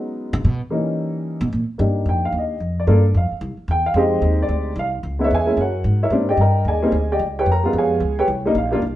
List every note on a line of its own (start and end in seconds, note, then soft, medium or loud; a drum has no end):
0.00 0.38 F#3 medium
0.00 0.38 G#3 medium
0.00 0.38 B3 medium
0.00 0.39 C#4 medium
0.00 0.39 D#4 medium
0.33 0.44 C#3 loud
0.44 0.60 B2 medium
0.70 1.45 E3 medium
0.70 1.46 G3 medium
0.70 1.46 A#3 medium
0.70 1.46 C#4 medium
0.70 1.46 D#4 medium
1.41 1.51 B2 loud
1.53 1.62 A#2 medium
1.78 2.05 G2 medium
1.78 2.53 A#3 medium
1.78 2.54 D4 medium
1.78 2.54 D#4 medium
1.78 2.54 G4 medium
2.06 2.32 F2 medium
2.06 2.24 G5 medium
2.25 2.34 F5 medium
2.32 2.59 D#2 medium
2.38 2.76 D#5 medium
2.60 2.87 F2 medium
2.80 3.13 D5 medium
2.87 3.14 G2 medium
2.87 3.02 A#3 medium
2.87 3.02 D4 medium
2.87 3.02 F4 medium
2.87 3.03 A4 medium
3.14 3.30 F2 medium
3.14 3.32 F5 medium
3.31 muted upright bass stroke soft
3.41 3.57 C2 loud
3.57 muted upright bass stroke soft
3.68 3.93 E2 loud
3.68 3.86 G5 loud
3.86 3.96 F5 medium
3.94 4.21 F2 loud
3.94 4.71 G#3 medium
3.94 4.71 C4 medium
3.94 4.71 D#4 medium
3.94 4.71 G4 medium
3.94 4.37 D#5 medium
4.22 4.48 D#2 medium
4.42 4.76 D5 medium
4.49 4.75 D2 medium
4.76 5.02 C2 medium
4.76 4.88 F5 loud
5.03 5.30 C#2 medium
5.19 5.29 G#3 medium
5.19 5.29 B3 medium
5.19 5.30 D#4 medium
5.19 5.23 E4 medium
5.24 5.33 E4 medium
5.24 5.33 B4 medium
5.24 5.33 C#5 medium
5.24 5.33 E5 medium
5.31 5.56 E2 medium
5.31 5.58 G#5 loud
5.35 5.58 G#4 medium
5.35 5.58 C#5 medium
5.35 5.59 E5 medium
5.46 5.56 G#3 medium
5.46 5.56 A#3 medium
5.46 5.57 C#4 medium
5.46 5.57 E4 medium
5.57 5.84 F#2 medium
5.57 6.00 F#5 medium
5.61 6.00 F#4 medium
5.61 6.00 A#4 medium
5.61 6.00 C#5 medium
5.84 6.10 G#2 medium
6.03 6.13 E4 medium
6.03 6.13 A#4 medium
6.03 6.12 C#5 medium
6.03 6.13 E5 medium
6.10 6.36 G#2 medium
6.10 6.27 G3 medium
6.10 6.27 A#3 medium
6.10 6.27 C4 medium
6.10 6.27 D4 medium
6.29 6.40 G4 medium
6.29 6.40 D5 medium
6.29 6.40 D#5 medium
6.29 6.39 G5 medium
6.37 6.64 G2 medium
6.37 6.65 D#5 medium
6.37 6.65 A#5 medium
6.41 6.66 A#4 medium
6.41 6.66 G5 medium
6.65 6.91 D#2 medium
6.65 7.08 G#4 medium
6.65 7.08 D5 medium
6.65 7.08 G#5 medium
6.69 7.08 D#5 medium
6.82 6.92 G3 medium
6.82 6.92 A#3 medium
6.82 6.92 C4 medium
6.82 6.93 D#4 medium
6.92 7.19 D2 medium
7.12 7.21 G4 medium
7.12 7.21 D5 medium
7.12 7.21 D#5 medium
7.12 7.21 G5 medium
7.19 7.45 C#2 medium
7.39 7.49 G4 medium
7.39 7.49 B4 medium
7.39 7.48 C#5 medium
7.39 7.48 G5 medium
7.46 7.73 F2 medium
7.52 7.75 A#4 medium
7.52 7.75 A#5 loud
7.63 7.99 G3 medium
7.63 8.00 G#3 medium
7.63 8.00 B3 medium
7.63 8.00 F4 medium
7.73 8.00 F2 medium
7.78 8.17 G#4 medium
7.78 8.17 C#5 medium
7.78 8.17 F5 medium
7.78 8.17 G#5 medium
8.00 8.27 C#2 medium
8.19 8.26 G4 medium
8.19 8.25 B4 medium
8.19 8.25 C#5 medium
8.19 8.25 G5 medium
8.28 8.54 C2 medium
8.45 8.55 G3 medium
8.45 8.55 A#3 medium
8.45 8.55 D4 medium
8.45 8.56 D#4 loud
8.55 8.81 A#1 medium
8.55 8.96 F5 medium
8.71 8.81 G3 medium
8.71 8.82 A#3 medium
8.71 8.82 D4 medium
8.71 8.82 F4 medium
8.82 8.96 C2 medium